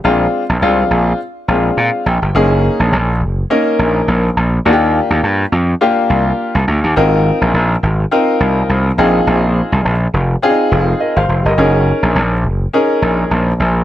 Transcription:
0.04 A#1 G#3 C4 D4 F4
0.49 A#1
0.62 C2 G#3 C4 D4 F4
0.91 A#1
1.48 A#1 G#3 C4 D4 F4
1.77 A#2 F5
2.06 A#1 G5
2.22 G1
2.35 F#1 A#3 C#4 D#4 G#4
2.80 A#1
2.92 A#1
3.21 F#1
3.50 A#3 C#4 D#4 A#4
3.79 A#1
4.08 A#1
4.37 A#1
4.65 D#2 A#3 D4 F4 F#4
4.73 G4
5.10 D#2
5.23 G2
5.52 F2
5.81 A#3 D4 F4 G4
6.10 C2
6.55 C2
6.68 D2
6.84 D#2
6.96 G#1 C4 D#4 F4 A#4
7.41 A#1
7.54 A#1
7.83 G#1
8.11 C4 D#4 F4 A#4
8.40 C2
8.69 C2
8.98 A#1 C4 D#4 F4 G#4
9.27 A#1
9.72 C2
9.85 A#1
10.14 F1
10.42 C4 D4 F4 G#4
10.49 D#4
10.72 F1
11.00 A#4 D#5
11.16 G#1 C5 F5
11.29 F1
11.45 G1 A#4 D#5
11.58 F#1 C#4 D#4 G#4 A#4
12.03 A#1
12.15 A#1
12.44 F#1
12.73 C#4 D#4 G#4 A#4
13.02 A#1
13.31 A#1
13.60 A#1

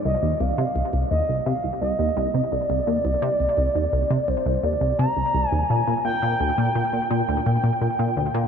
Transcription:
0.05 C2 D#5
0.23 D#2
0.40 C2 F5
0.58 C3
0.76 C2
0.93 C2
1.11 D#2 D#5
1.29 C2
1.46 C3 F5
1.64 C2
1.81 C2 D#5
1.99 D#2
2.17 C2
2.34 C3
2.51 C2 D5
2.70 C2
2.87 D#2
3.05 C2
3.22 C3
3.40 C2
3.57 C2
3.75 D#2
3.93 C2
4.10 C3
4.28 C2 C5
4.46 C2
4.63 D#2 D5
4.81 C2
4.99 C3 A#5
5.17 C2
5.34 C2
5.49 D#2 G#5
5.69 A#2 G#5
5.87 A#2
6.05 A#2 G5
6.22 A#2
6.40 D2
6.58 A#2
6.75 A#2
6.93 A#2
7.10 A#2 G5
7.29 D2
7.46 A#2
7.64 A#2
7.81 A#2
7.99 A#2
8.17 D2
8.34 A#2

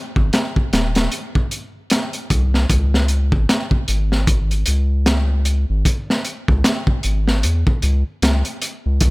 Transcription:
0.16 G#1, kick
0.33 snare, closed hi-hat
0.56 kick
0.73 D#1, snare, closed hi-hat
0.95 snare, closed hi-hat
1.12 closed hi-hat
1.35 kick
1.51 closed hi-hat
1.90 snare, closed hi-hat
2.13 closed hi-hat
2.30 C2, kick, closed hi-hat
2.54 snare
2.70 C#2, kick, closed hi-hat
2.94 snare
3.08 closed hi-hat
3.32 G#1, kick
3.49 snare, closed hi-hat
3.71 kick
3.88 G#1, closed hi-hat
4.12 snare
4.27 kick, closed hi-hat
4.51 closed hi-hat
4.66 C#2, closed hi-hat
5.06 snare, closed hi-hat
5.45 closed hi-hat
5.70 G#1
5.85 kick, closed hi-hat
6.10 snare
6.25 closed hi-hat
6.48 C#2, kick
6.64 snare, closed hi-hat
6.87 kick
7.03 G#1, closed hi-hat
7.28 snare
7.43 E2, closed hi-hat
7.67 kick
7.82 C#2, closed hi-hat
8.22 C#2, snare, closed hi-hat
8.45 closed hi-hat
8.62 closed hi-hat
8.86 C#2
9.01 C#2, kick, closed hi-hat

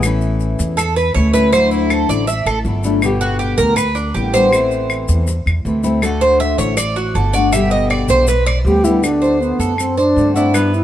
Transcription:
Already playing: A1
0.02 E3 A3 C#4 E4, claves, maracas
0.21 maracas
0.40 maracas
0.59 E2, maracas
0.77 A4, muted nylon-string guitar stroke, claves, maracas
0.96 B4, maracas
1.14 D2 E3 A3 C#4 E4 C#5, maracas
1.33 A3 C#4 E4 B4, maracas
1.52 D3 F#3 A3 D4 E4 C5, claves, maracas
1.71 E4, maracas
1.90 A4, claves, maracas
2.09 A1 D5, maracas
2.27 E5, muted nylon-string guitar stroke, maracas
2.46 A1 A4, claves, maracas
2.65 G1 F#3 A3 D4 E4, maracas
2.84 F#3 A3 D4 E4, maracas
3.02 B2 D3 G3 B3 G4, claves, maracas
3.21 F#4, maracas
3.39 G4, maracas
3.58 D2 A#4, maracas
3.76 B4, muted nylon-string guitar stroke, claves, maracas
3.95 D4, maracas
4.14 A1 D3 G3 B3 G4, maracas
4.34 D3 G3 B3 G4 C5, maracas
4.51 E3 A3 C4 E4, claves, maracas
4.71 maracas
4.90 claves, maracas
5.08 E2, maracas
5.27 muted nylon-string guitar stroke, maracas
5.46 E2, claves, maracas
5.65 D2 E3 A3 C4 E4, maracas
5.83 A3 C4 E4, maracas
6.01 D3 A3 D4 F#4 A4, claves, maracas
6.21 C5, maracas
6.40 E5, maracas
6.58 A1 C#5, maracas
6.77 D5, muted nylon-string guitar stroke, claves, maracas
6.96 F#4, maracas
7.15 G1 D3 A3 D4 F#4 A4, maracas
7.33 A3 D4 F#4 D5, maracas
7.52 B2 D3 G3 B3 G4 E5, claves, maracas
7.71 D#5, maracas
7.90 D5, claves, maracas
8.09 B1 C5, maracas
8.27 B4, muted nylon-string guitar stroke, maracas
8.46 D5, claves, maracas
8.65 D2 D3 G3 B3 G4, maracas
8.84 D3 G3 B3 E4 G4, maracas
9.02 D3 A3 D4 F#4, claves, maracas
9.22 C5, maracas
9.40 B3, maracas
9.59 F#2 A4, maracas
9.78 C4, muted nylon-string guitar stroke, claves, maracas
9.97 D4 C5, maracas
10.16 G2 D3 A3 C4 F#4, maracas
10.34 A3 C4 D4 E4 F#4, maracas
10.53 G3 B3 E4, claves, maracas
10.74 E4, maracas

